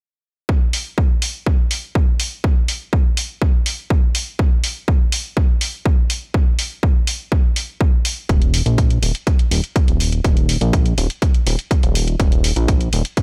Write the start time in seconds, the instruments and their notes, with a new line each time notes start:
0.49 kick
0.73 open hi-hat
0.98 kick
1.22 open hi-hat
1.46 kick
1.71 open hi-hat
1.95 kick
2.20 open hi-hat
2.44 kick
2.68 open hi-hat
2.93 kick
3.17 open hi-hat
3.42 kick
3.66 open hi-hat
3.90 kick
4.15 open hi-hat
4.39 kick
4.64 open hi-hat
4.88 kick
5.12 open hi-hat
5.37 kick
5.61 open hi-hat
5.86 kick
6.10 open hi-hat
6.34 kick
6.59 open hi-hat
6.83 kick
7.07 open hi-hat
7.32 kick
7.56 open hi-hat
7.81 kick
8.05 open hi-hat
8.29 analog synth bass D#1, kick, closed hi-hat
8.42 closed hi-hat
8.54 open hi-hat
8.66 analog synth bass A#1, closed hi-hat
8.78 kick, closed hi-hat
8.90 closed hi-hat
9.02 analog synth bass D#1, open hi-hat
9.15 closed hi-hat
9.27 kick, closed hi-hat
9.39 closed hi-hat
9.51 analog synth bass D#1, open hi-hat
9.64 closed hi-hat
9.76 kick, closed hi-hat
9.88 analog synth bass D#1, closed hi-hat
10.00 open hi-hat
10.12 closed hi-hat
10.24 analog synth bass D#1, kick, closed hi-hat
10.37 closed hi-hat
10.49 open hi-hat
10.61 analog synth bass A#1, closed hi-hat
10.73 kick, closed hi-hat
10.86 closed hi-hat
10.98 analog synth bass D#1, open hi-hat
11.10 closed hi-hat
11.22 kick, closed hi-hat
11.34 closed hi-hat
11.46 analog synth bass D#1, open hi-hat
11.59 closed hi-hat
11.71 kick, closed hi-hat
11.83 analog synth bass D#1, closed hi-hat
11.95 open hi-hat
12.08 closed hi-hat
12.20 analog synth bass D#1, kick, closed hi-hat
12.32 closed hi-hat
12.44 open hi-hat
12.56 analog synth bass A#1, closed hi-hat
12.68 kick, closed hi-hat
12.81 closed hi-hat
12.93 analog synth bass D#1, open hi-hat
13.05 closed hi-hat
13.17 kick, closed hi-hat